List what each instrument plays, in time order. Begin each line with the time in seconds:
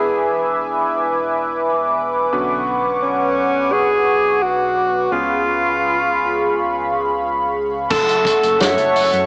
Already playing: detuned saw bass E1, electric grand piano B3 D4 E4 G#4 B4, alto saxophone G#4, analog synth pad B4 E5 G#5 D6
2.33 detuned saw bass B1, electric grand piano D3 B3 C#4 F#4 B4, analog synth pad F#5 C#6
3.02 alto saxophone C#4
3.72 alto saxophone G#4
4.42 alto saxophone F#4
5.12 detuned saw bass C#2, electric grand piano B3 C#4 F4 G#4 B4, alto saxophone F4, analog synth pad G#4 F5 B5 C#6
7.90 detuned saw bass F#1, alto saxophone A4, analog synth pad A4 E5 F#5 C#6, kick, closed hi-hat, crash
8.08 detuned saw bass F#1, closed hi-hat
8.25 kick, closed hi-hat
8.43 detuned saw bass F#1, closed hi-hat
8.60 detuned saw bass F#2, alto saxophone C#5, snare, closed hi-hat
8.78 detuned saw bass F#1, closed hi-hat
8.95 detuned saw bass F#1, open hi-hat
9.13 detuned saw bass F#2, closed hi-hat